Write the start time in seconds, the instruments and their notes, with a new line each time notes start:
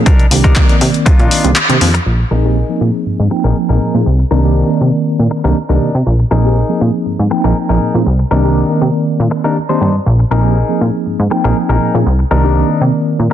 0.06 analog synth bass C2, clean electric guitar D4 D#4 A#4, kick, closed hi-hat
0.20 closed hi-hat
0.31 analog synth bass C2, tine electric piano D#3 A#3 C4 D4 G4, open hi-hat
0.44 tine electric piano D#3 A#3 C4 D4 G4, clean electric guitar D4 D#4 A#4, kick, closed hi-hat
0.56 kick, clap, closed hi-hat
0.69 tine electric piano D#3 A#3 C4 A#4 D5, closed hi-hat
0.81 analog synth bass C3, open hi-hat
0.94 closed hi-hat
1.06 clean electric guitar D4 D#4 F4, kick, closed hi-hat
1.19 analog synth bass A#2, closed hi-hat
1.31 open hi-hat
1.44 analog synth bass C2, tine electric piano D#3 A#3 C4 D4 G4, closed hi-hat
1.56 clap, closed hi-hat
1.69 analog synth bass C3, tine electric piano D#3 A#3 C4 D4 G4, closed hi-hat
1.81 analog synth bass F2, open hi-hat
1.94 muted clean electric guitar stroke, closed hi-hat
2.06 analog synth bass A#1, crash
2.19 muted clean electric guitar stroke
2.31 analog synth bass A#1, tine electric piano F3 A#3 C4 D#4 G#4, clean electric guitar D#4 G#4 A#4
2.44 tine electric piano F3 A#3 C4 D#4 G4
2.69 tine electric piano F3 A#3 C4 D#4 G#4
2.81 analog synth bass A#2
3.06 analog synth bass G#2
3.19 analog synth bass G#2
3.30 tine electric piano F3 A#3 C4 D#4 G5, muted clean electric guitar stroke
3.44 analog synth bass A#1, clean electric guitar D#4 G#4 A#4
3.69 analog synth bass A#1, clean electric guitar D#4 G#4 A#4
3.81 analog synth bass A#2
3.94 analog synth bass A#2, tine electric piano F3 A#3 C4 D#4 G#4
4.06 analog synth bass C2
4.19 muted clean electric guitar stroke
4.31 analog synth bass C2, tine electric piano D#3 A#3 C4 D4 G4, clean electric guitar D4 D#4 A#4
4.44 tine electric piano D#3 A#3 C4 D4 G4
4.69 tine electric piano D#3 A#3 C4 A#4 D5
4.81 analog synth bass C3
5.19 analog synth bass A#2
5.31 muted clean electric guitar stroke
5.44 analog synth bass C2, tine electric piano D#3 A#3 C4 D4 G4, clean electric guitar D4 D#4 A#4
5.69 analog synth bass C2, tine electric piano D#3 A#3 C4 D4 G4, clean electric guitar D4 D#4 A#4
5.81 analog synth bass C3
5.95 analog synth bass C3
6.06 analog synth bass A#1
6.19 muted clean electric guitar stroke
6.31 analog synth bass A#1, tine electric piano F3 A#3 C4 D#4 G#4, clean electric guitar D#4 G#4 A#4
6.44 tine electric piano F3 A#3 C4 D#4 G4
6.68 tine electric piano F3 A#3 C4 D#4 G#4
6.81 analog synth bass A#2
7.06 analog synth bass G#2
7.19 analog synth bass G#2
7.30 tine electric piano F3 A#3 C4 D#4 G5, muted clean electric guitar stroke
7.44 analog synth bass A#1, clean electric guitar D#4 G#4 A#4
7.69 analog synth bass A#1, clean electric guitar D#4 G#4 A#4
7.94 analog synth bass A#2, tine electric piano F3 A#3 C4 D#4 G#4
8.06 analog synth bass C2
8.19 muted clean electric guitar stroke
8.31 analog synth bass C2, tine electric piano D#3 A#3 C4 D4 G4, clean electric guitar D4 D#4 A#4
8.44 tine electric piano D#3 A#3 C4 D4 G4
8.68 tine electric piano D#3 A#3 C4 A#4 D5
8.81 analog synth bass C3
9.20 analog synth bass A#2
9.31 muted clean electric guitar stroke
9.44 tine electric piano D#3 A#3 C4 D4 G4, clean electric guitar D4 D#4 A#4
9.69 tine electric piano D#3 A#3 C4 D4 G4, clean electric guitar D4 D#4 C5
9.81 analog synth bass G2
10.06 analog synth bass A#1
10.19 muted clean electric guitar stroke
10.31 analog synth bass A#1, tine electric piano F3 A#3 C4 D#4 G#4, clean electric guitar D#4 G#4 A#4
10.44 tine electric piano F3 A#3 C4 D#4 G4
10.68 tine electric piano F3 A#3 C4 D#4 G#4
10.81 analog synth bass A#2
11.06 analog synth bass G#2
11.19 analog synth bass G#2
11.30 tine electric piano F3 A#3 C4 D#4 G5, muted clean electric guitar stroke
11.44 analog synth bass A#1, clean electric guitar D#4 G#4 A#4
11.69 analog synth bass A#1, clean electric guitar D#4 G#4 A#4
11.81 analog synth bass A#2
11.94 analog synth bass A#2, tine electric piano F3 A#3 C4 D#4 G#4
12.06 analog synth bass C2
12.19 muted clean electric guitar stroke
12.31 analog synth bass C2, tine electric piano D#3 A#3 C4 D4 G4, clean electric guitar D4 D#4 A#4
12.44 tine electric piano D#3 A#3 C4 D4 G4
12.68 tine electric piano D#3 A#3 C4 A#4 D5
12.81 analog synth bass C3
13.19 analog synth bass A#2